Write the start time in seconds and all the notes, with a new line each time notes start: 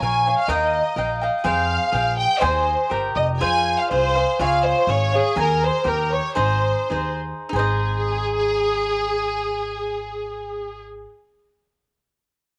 0.00 A#1 A#4 C#5 F5 G#5
0.26 C#5 F5 G#5
0.39 F5
0.48 D#2 A#4 D#5 F5 G5
0.96 A#1 A#4 D#5 F5 G5
1.22 D#5 F5 G5
1.44 F2 G#4 C5 F5 G5
1.92 A#1 G#4 C5 F5 G5
2.17 G5
2.40 D#2 G#4 C5 D#5 G#5
2.90 G1 G4 A#4 D#5 G5
3.15 F1 D#5
3.40 F2 F4 G#4 C5 F5 G#5
3.78 F5
3.91 C2 F4 G#4 C5 F5
4.15 G#4 C5 F5
4.39 C#2 F4 G#4 C#5 F5
4.65 C5
4.87 G#1 F4 G#4 C#5 F5
5.12 G#4 C#5 F5
5.17 G#4
5.36 D#2 G#4 A#4 D#5 G#5
5.41 A#4
5.63 C5
5.84 D#2 G4 A#4 D#5 G5
6.12 C#5
6.35 G#1 D#4 G#4 C5 D#5
6.90 D#2 D#4 G#4 C5 D#5
7.49 G#1 D#4 G#4
7.56 C5 D#5